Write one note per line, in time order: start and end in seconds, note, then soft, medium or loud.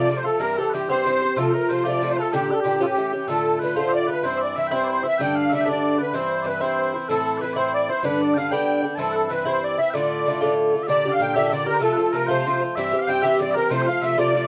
0.00 0.17 D5 medium
0.00 0.18 D5 medium
0.09 0.25 C3 medium
0.09 0.25 F3 medium
0.09 0.24 A3 medium
0.09 0.23 F4 medium
0.17 0.25 C5 medium
0.17 0.26 C5 medium
0.24 0.39 F3 soft
0.24 0.40 A3 soft
0.24 0.40 F4 soft
0.24 0.40 A4 medium
0.24 0.42 A4 medium
0.40 0.57 G2 medium
0.40 0.57 E3 medium
0.40 0.58 C4 medium
0.40 0.57 G4 medium
0.40 0.57 A#4 medium
0.40 0.58 A#4 medium
0.57 0.73 E3 soft
0.57 0.74 C4 soft
0.57 0.73 G4 soft
0.57 0.70 A4 medium
0.57 0.72 A4 medium
0.70 0.89 G2 medium
0.70 0.89 E3 medium
0.70 0.89 G4 medium
0.70 0.74 B4 medium
0.75 0.89 C4 medium
0.75 0.82 G4 medium
0.75 0.88 G4 medium
0.89 1.04 G2 medium
0.89 1.05 E3 medium
0.89 1.06 C4 medium
0.89 1.06 G4 medium
0.89 1.37 C5 medium
0.89 1.38 C5 loud
1.05 1.21 G2 medium
1.05 1.21 E3 medium
1.05 1.21 C4 medium
1.05 1.20 G4 medium
1.21 1.37 E3 soft
1.21 1.37 C4 soft
1.21 1.37 G4 soft
1.36 1.54 C3 medium
1.36 1.54 F3 medium
1.36 1.53 A3 medium
1.36 1.52 F4 medium
1.36 1.54 A4 medium
1.36 1.51 A4 medium
1.50 1.69 F4 medium
1.50 1.54 C5 medium
1.54 1.69 F3 soft
1.54 1.69 A3 soft
1.54 1.69 A#4 medium
1.54 1.71 A#4 medium
1.69 1.84 C3 medium
1.69 1.85 F3 medium
1.69 1.84 A3 medium
1.69 1.84 F4 medium
1.69 1.84 C5 medium
1.69 1.86 C5 medium
1.84 2.00 C3 medium
1.84 2.01 F3 medium
1.84 2.02 A3 medium
1.84 2.02 F4 medium
1.84 2.10 D5 medium
1.88 2.12 D5 medium
2.02 2.17 C3 medium
2.02 2.17 F3 medium
2.02 2.18 A3 medium
2.02 2.17 F4 medium
2.10 2.17 C5 medium
2.17 2.33 F3 soft
2.17 2.33 A3 soft
2.17 2.33 F4 soft
2.17 2.32 A4 medium
2.17 2.34 A4 medium
2.32 2.50 A#2 medium
2.32 2.50 D3 medium
2.32 2.50 D4 medium
2.32 2.51 G4 medium
2.32 2.54 G4 medium
2.32 2.48 G4 medium
2.50 2.63 D3 soft
2.50 2.64 D4 soft
2.50 2.65 G4 medium
2.50 2.54 B4 medium
2.54 2.60 A4 medium
2.54 2.59 A4 soft
2.60 2.83 G4 medium
2.60 2.81 G4 medium
2.64 2.80 A#2 medium
2.64 2.80 D3 medium
2.64 2.80 D4 medium
2.64 2.79 G4 medium
2.80 2.95 A2 medium
2.80 2.97 E3 medium
2.80 2.97 C#4 medium
2.80 2.85 F4 medium
2.80 2.97 G4 medium
2.80 2.86 A4 medium
2.86 3.28 G4 medium
2.86 3.12 G4 medium
2.96 3.12 A2 medium
2.96 3.13 E3 medium
2.96 3.13 C#4 medium
2.96 3.12 G4 medium
3.13 3.28 E3 soft
3.13 3.28 C#4 soft
3.13 3.28 G4 soft
3.28 3.60 A2 medium
3.28 3.61 D3 medium
3.28 3.61 A3 medium
3.28 3.61 F4 medium
3.28 3.60 A4 medium
3.28 3.59 A4 medium
3.60 3.76 A2 medium
3.60 3.77 D3 medium
3.60 3.75 A3 medium
3.60 3.75 F4 medium
3.60 3.75 B4 medium
3.60 3.76 B4 medium
3.75 4.09 A2 medium
3.75 4.09 D3 medium
3.75 4.08 A3 medium
3.75 4.06 F4 medium
3.75 3.89 C5 medium
3.75 3.94 C5 medium
3.89 4.07 D5 medium
3.89 3.92 E5 medium
3.95 4.10 D5 loud
4.07 4.23 D3 soft
4.07 4.24 A3 soft
4.07 4.23 F4 soft
4.07 4.23 B4 medium
4.11 4.25 B4 medium
4.23 4.54 G2 medium
4.23 4.56 E3 medium
4.23 4.56 C4 medium
4.23 4.56 E4 medium
4.23 4.38 C5 medium
4.23 4.42 C5 medium
4.38 4.56 D5 medium
4.38 4.41 E5 medium
4.43 4.58 D5 medium
4.56 4.71 G2 medium
4.56 4.71 E3 medium
4.56 4.70 C4 medium
4.56 4.70 E4 medium
4.56 4.67 E5 medium
4.56 4.73 E5 medium
4.67 5.02 E4 medium
4.67 4.71 G5 medium
4.71 5.04 G2 medium
4.71 5.04 E3 medium
4.71 5.04 C4 medium
4.71 4.84 C5 medium
4.71 4.90 C5 medium
4.84 4.88 D5 medium
4.88 5.03 C5 medium
4.88 5.06 C5 medium
5.03 5.20 E3 soft
5.03 5.19 C4 soft
5.03 5.18 E4 soft
5.03 5.18 E5 medium
5.08 5.21 E5 medium
5.18 5.50 G2 medium
5.18 5.51 D3 medium
5.18 5.52 A3 medium
5.18 5.52 D4 medium
5.18 5.35 G5 medium
5.22 5.36 G5 medium
5.35 5.50 F5 medium
5.41 5.53 F5 medium
5.50 5.67 G2 medium
5.50 5.66 D3 medium
5.50 5.65 A3 medium
5.50 5.65 D4 medium
5.50 5.61 E5 medium
5.55 5.69 E5 medium
5.61 5.65 G5 medium
5.65 5.99 G2 medium
5.65 5.99 D3 medium
5.65 5.98 A3 medium
5.65 5.96 D4 medium
5.65 5.98 D5 medium
5.70 6.02 D5 medium
5.97 6.13 D3 soft
5.97 6.14 A3 soft
5.97 6.13 D4 soft
5.97 6.14 B4 medium
6.02 6.16 B4 medium
6.14 6.43 G2 medium
6.14 6.44 E3 medium
6.14 6.45 C4 medium
6.14 6.46 E4 medium
6.14 6.42 C5 medium
6.14 6.49 C5 medium
6.42 6.61 G2 medium
6.42 6.60 E3 medium
6.42 6.46 D5 medium
6.46 6.60 C4 medium
6.46 6.59 E4 medium
6.46 6.61 B4 medium
6.60 6.94 G2 medium
6.60 6.94 E3 medium
6.60 6.93 C4 medium
6.60 6.93 E4 medium
6.60 7.09 C5 medium
6.60 6.96 C5 medium
6.94 7.09 E3 soft
6.94 7.09 C4 soft
6.94 7.09 E4 soft
7.09 7.40 A2 medium
7.09 7.41 E3 medium
7.09 7.41 C4 medium
7.09 7.42 E4 medium
7.09 7.38 A4 medium
7.09 7.39 A4 medium
7.38 7.56 A2 medium
7.38 7.53 B4 medium
7.38 7.56 B4 medium
7.38 7.41 D5 medium
7.42 7.56 E3 medium
7.42 7.56 C4 medium
7.42 7.55 E4 medium
7.53 7.89 C4 medium
7.53 7.88 E4 medium
7.53 7.72 C5 medium
7.53 7.57 D5 medium
7.57 7.89 A2 medium
7.57 7.89 E3 medium
7.57 7.74 C5 medium
7.74 7.89 D5 medium
7.89 8.03 E3 soft
7.89 8.04 C4 soft
7.89 8.04 E4 soft
7.89 8.06 C5 medium
7.89 8.05 C5 medium
8.03 8.35 G2 medium
8.03 8.35 D3 medium
8.03 8.36 B3 medium
8.03 8.36 D4 medium
8.03 8.22 B4 medium
8.03 8.21 B4 medium
8.21 8.34 D5 medium
8.21 8.38 D5 medium
8.34 8.51 G2 medium
8.34 8.51 D3 soft
8.34 8.51 B3 medium
8.34 8.52 F5 medium
8.34 8.51 F5 medium
8.34 8.38 G5 medium
8.38 8.50 D4 medium
8.51 8.84 G2 medium
8.51 8.84 D3 medium
8.51 8.82 B3 medium
8.51 8.81 D4 medium
8.51 8.85 G5 medium
8.51 8.95 G5 medium
8.82 8.98 D3 soft
8.82 8.99 B3 soft
8.82 8.98 D4 soft
8.95 9.28 G2 medium
8.95 9.29 E3 medium
8.95 9.30 C4 medium
8.95 9.31 A4 medium
8.95 9.12 A4 medium
8.95 8.99 A5 medium
9.00 9.31 E4 medium
9.12 9.31 A4 medium
9.12 9.16 B4 medium
9.30 9.46 G2 medium
9.30 9.46 E3 medium
9.30 9.45 C4 medium
9.30 9.44 E4 medium
9.30 9.45 B4 medium
9.30 9.46 B4 medium
9.45 9.79 G2 medium
9.45 9.78 E3 medium
9.45 9.78 C4 medium
9.45 9.76 E4 medium
9.45 9.64 C5 medium
9.64 9.79 D5 medium
9.77 9.94 E3 soft
9.77 9.94 C4 soft
9.77 9.93 E4 soft
9.77 9.94 E5 medium
9.77 9.90 E5 medium
9.90 10.25 A2 medium
9.90 10.83 D5 medium
9.90 9.94 G5 medium
9.94 10.26 D3 medium
9.94 10.26 A3 medium
9.94 10.26 F4 medium
9.94 10.54 D5 medium
10.26 10.41 A2 medium
10.26 10.41 D3 medium
10.26 10.41 A3 medium
10.26 10.40 F4 medium
10.41 10.74 A2 medium
10.41 10.74 D3 medium
10.41 10.73 A3 medium
10.41 10.72 F4 medium
10.73 10.87 D3 soft
10.73 10.89 A3 soft
10.73 10.88 F4 soft
10.83 11.12 D5 medium
10.83 10.87 E5 medium
10.88 11.05 A#2 medium
10.88 11.05 D3 medium
10.88 11.05 D4 medium
10.88 11.04 G4 medium
10.88 11.14 D5 loud
11.05 11.20 D3 soft
11.05 11.21 D4 soft
11.05 11.20 G4 medium
11.12 11.34 F5 medium
11.12 11.21 F5 loud
11.20 11.35 A#2 medium
11.20 11.35 D3 medium
11.20 11.35 D4 medium
11.20 11.34 G4 medium
11.20 11.35 G5 medium
11.34 11.50 A#2 medium
11.34 11.51 D3 medium
11.34 11.52 D4 medium
11.34 11.52 G4 medium
11.34 11.52 E5 medium
11.34 11.47 E5 medium
11.49 11.67 A#2 medium
11.49 11.66 D5 medium
11.49 11.52 E5 medium
11.53 11.67 D3 medium
11.53 11.66 D4 medium
11.53 11.65 G4 medium
11.53 11.67 D5 medium
11.66 11.80 D3 soft
11.66 11.81 D4 soft
11.66 11.82 G4 medium
11.66 11.74 A#4 medium
11.66 11.82 A#4 loud
11.74 11.81 A#4 medium
11.74 11.77 C5 medium
11.80 11.98 C3 medium
11.80 11.98 F3 medium
11.80 11.97 A3 medium
11.80 11.96 F4 medium
11.80 11.93 A4 medium
11.80 12.00 A4 medium
11.93 12.13 F4 medium
11.93 11.97 B4 medium
11.97 12.13 F3 medium
11.97 12.13 A3 soft
11.97 12.12 A4 medium
12.01 12.16 A4 medium
12.12 12.29 C3 medium
12.12 12.29 F3 medium
12.12 12.28 A3 medium
12.12 12.27 F4 medium
12.12 12.27 A#4 medium
12.12 12.29 A#4 medium
12.27 12.45 C3 medium
12.27 12.45 F3 medium
12.27 12.46 A3 medium
12.27 12.46 F4 medium
12.27 12.75 C5 medium
12.27 12.63 C5 medium
12.46 12.61 C3 medium
12.46 12.62 F3 medium
12.46 12.61 A3 medium
12.46 12.60 F4 medium
12.62 12.77 F3 soft
12.62 12.77 A3 soft
12.62 12.77 F4 soft
12.75 12.94 G2 medium
12.75 12.94 E3 medium
12.75 12.92 C4 medium
12.75 12.91 G4 medium
12.75 12.99 E5 loud
12.75 12.99 E5 medium
12.93 13.08 E3 soft
12.93 13.08 C4 medium
12.93 13.08 G4 medium
12.99 13.07 F5 medium
12.99 13.09 F5 medium
13.07 13.23 G2 medium
13.07 13.23 E3 medium
13.07 13.23 C4 medium
13.07 13.22 G4 medium
13.07 13.22 G5 medium
13.07 13.24 G5 medium
13.22 13.38 G2 medium
13.22 13.39 E3 medium
13.22 13.40 C4 medium
13.22 13.40 G4 medium
13.22 13.39 E5 medium
13.22 13.40 E5 medium
13.39 13.55 G2 medium
13.39 13.56 E3 medium
13.39 13.55 C4 medium
13.39 13.54 G4 medium
13.39 13.51 D5 medium
13.39 13.55 D5 medium
13.51 13.71 A#4 medium
13.51 13.54 E5 medium
13.56 13.71 E3 soft
13.56 13.71 C4 soft
13.56 13.71 G4 soft
13.56 13.71 A#4 medium
13.70 13.87 C3 medium
13.70 13.88 F3 medium
13.70 13.87 A3 medium
13.70 13.85 F4 medium
13.70 13.82 C5 medium
13.70 13.88 C5 medium
13.82 13.86 G5 medium
13.86 14.01 F3 soft
13.86 14.02 A3 soft
13.86 14.02 F4 medium
13.86 14.02 F5 medium
13.86 14.04 F5 medium
14.02 14.17 C3 medium
14.02 14.18 F3 medium
14.02 14.16 A3 medium
14.02 14.16 F4 medium
14.02 14.19 E5 medium
14.02 14.18 E5 medium
14.17 14.33 C3 medium
14.17 14.33 F3 medium
14.17 14.34 A3 medium
14.17 14.35 F4 medium
14.17 14.47 D5 loud
14.17 14.47 D5 medium
14.34 14.47 C3 medium
14.34 14.47 F3 medium
14.34 14.47 A3 medium
14.34 14.47 F4 medium